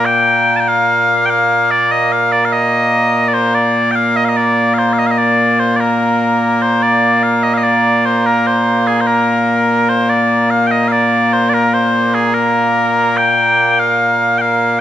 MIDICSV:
0, 0, Header, 1, 2, 480
1, 0, Start_track
1, 0, Key_signature, -2, "major"
1, 0, Tempo, 821918
1, 29, Time_signature, 2, 2, 24, 8
1, 8647, End_track
2, 0, Start_track
2, 0, Title_t, "Bagpipes"
2, 0, Program_c, 0, 109
2, 0, Note_on_c, 0, 46, 89
2, 0, Note_on_c, 0, 58, 89
2, 32, Note_on_c, 0, 79, 106
2, 328, Note_off_c, 0, 79, 0
2, 328, Note_on_c, 0, 81, 81
2, 350, Note_off_c, 0, 81, 0
2, 350, Note_on_c, 0, 79, 81
2, 398, Note_off_c, 0, 79, 0
2, 398, Note_on_c, 0, 77, 111
2, 734, Note_off_c, 0, 77, 0
2, 734, Note_on_c, 0, 79, 104
2, 759, Note_off_c, 0, 79, 0
2, 759, Note_on_c, 0, 77, 104
2, 998, Note_off_c, 0, 77, 0
2, 998, Note_on_c, 0, 74, 104
2, 1119, Note_off_c, 0, 74, 0
2, 1119, Note_on_c, 0, 75, 90
2, 1239, Note_off_c, 0, 75, 0
2, 1239, Note_on_c, 0, 77, 96
2, 1355, Note_off_c, 0, 77, 0
2, 1355, Note_on_c, 0, 74, 93
2, 1432, Note_off_c, 0, 74, 0
2, 1432, Note_on_c, 0, 77, 69
2, 1474, Note_off_c, 0, 77, 0
2, 1474, Note_on_c, 0, 75, 105
2, 1918, Note_off_c, 0, 75, 0
2, 1918, Note_on_c, 0, 74, 72
2, 1949, Note_off_c, 0, 74, 0
2, 1949, Note_on_c, 0, 72, 94
2, 2071, Note_off_c, 0, 72, 0
2, 2071, Note_on_c, 0, 74, 81
2, 2286, Note_off_c, 0, 74, 0
2, 2286, Note_on_c, 0, 79, 98
2, 2309, Note_off_c, 0, 79, 0
2, 2309, Note_on_c, 0, 77, 98
2, 2431, Note_off_c, 0, 77, 0
2, 2431, Note_on_c, 0, 75, 99
2, 2480, Note_off_c, 0, 75, 0
2, 2480, Note_on_c, 0, 77, 64
2, 2503, Note_off_c, 0, 77, 0
2, 2503, Note_on_c, 0, 75, 64
2, 2552, Note_off_c, 0, 75, 0
2, 2552, Note_on_c, 0, 74, 86
2, 2768, Note_off_c, 0, 74, 0
2, 2768, Note_on_c, 0, 77, 74
2, 2794, Note_off_c, 0, 77, 0
2, 2794, Note_on_c, 0, 72, 74
2, 2880, Note_off_c, 0, 72, 0
2, 2880, Note_on_c, 0, 77, 70
2, 2912, Note_off_c, 0, 77, 0
2, 2912, Note_on_c, 0, 75, 98
2, 2958, Note_off_c, 0, 75, 0
2, 2958, Note_on_c, 0, 77, 68
2, 2984, Note_off_c, 0, 77, 0
2, 2984, Note_on_c, 0, 75, 68
2, 3027, Note_off_c, 0, 75, 0
2, 3027, Note_on_c, 0, 74, 80
2, 3268, Note_off_c, 0, 74, 0
2, 3268, Note_on_c, 0, 72, 77
2, 3364, Note_off_c, 0, 72, 0
2, 3364, Note_on_c, 0, 74, 68
2, 3388, Note_off_c, 0, 74, 0
2, 3388, Note_on_c, 0, 70, 68
2, 3865, Note_off_c, 0, 70, 0
2, 3865, Note_on_c, 0, 72, 94
2, 3986, Note_off_c, 0, 72, 0
2, 3986, Note_on_c, 0, 74, 77
2, 4224, Note_off_c, 0, 74, 0
2, 4224, Note_on_c, 0, 77, 83
2, 4340, Note_off_c, 0, 77, 0
2, 4340, Note_on_c, 0, 75, 85
2, 4402, Note_off_c, 0, 75, 0
2, 4402, Note_on_c, 0, 77, 71
2, 4423, Note_off_c, 0, 77, 0
2, 4423, Note_on_c, 0, 75, 71
2, 4460, Note_off_c, 0, 75, 0
2, 4460, Note_on_c, 0, 74, 90
2, 4704, Note_off_c, 0, 74, 0
2, 4704, Note_on_c, 0, 72, 78
2, 4823, Note_off_c, 0, 72, 0
2, 4823, Note_on_c, 0, 70, 94
2, 4945, Note_off_c, 0, 70, 0
2, 4945, Note_on_c, 0, 72, 78
2, 5180, Note_off_c, 0, 72, 0
2, 5180, Note_on_c, 0, 68, 76
2, 5261, Note_off_c, 0, 68, 0
2, 5261, Note_on_c, 0, 72, 68
2, 5294, Note_off_c, 0, 72, 0
2, 5294, Note_on_c, 0, 70, 79
2, 5776, Note_off_c, 0, 70, 0
2, 5776, Note_on_c, 0, 72, 99
2, 5895, Note_off_c, 0, 72, 0
2, 5895, Note_on_c, 0, 74, 75
2, 6135, Note_off_c, 0, 74, 0
2, 6135, Note_on_c, 0, 77, 88
2, 6231, Note_off_c, 0, 77, 0
2, 6231, Note_on_c, 0, 79, 90
2, 6255, Note_off_c, 0, 79, 0
2, 6255, Note_on_c, 0, 75, 90
2, 6354, Note_off_c, 0, 75, 0
2, 6354, Note_on_c, 0, 77, 88
2, 6378, Note_off_c, 0, 77, 0
2, 6378, Note_on_c, 0, 74, 88
2, 6616, Note_off_c, 0, 74, 0
2, 6616, Note_on_c, 0, 72, 90
2, 6712, Note_off_c, 0, 72, 0
2, 6712, Note_on_c, 0, 74, 96
2, 6738, Note_off_c, 0, 74, 0
2, 6738, Note_on_c, 0, 70, 96
2, 6854, Note_off_c, 0, 70, 0
2, 6854, Note_on_c, 0, 72, 88
2, 7091, Note_off_c, 0, 72, 0
2, 7091, Note_on_c, 0, 68, 83
2, 7208, Note_off_c, 0, 68, 0
2, 7208, Note_on_c, 0, 70, 91
2, 7692, Note_off_c, 0, 70, 0
2, 7692, Note_on_c, 0, 79, 113
2, 8056, Note_off_c, 0, 79, 0
2, 8056, Note_on_c, 0, 77, 96
2, 8398, Note_off_c, 0, 77, 0
2, 8398, Note_on_c, 0, 79, 94
2, 8417, Note_off_c, 0, 79, 0
2, 8417, Note_on_c, 0, 77, 94
2, 8638, Note_off_c, 0, 77, 0
2, 8647, Note_off_c, 0, 46, 0
2, 8647, Note_off_c, 0, 58, 0
2, 8647, End_track
0, 0, End_of_file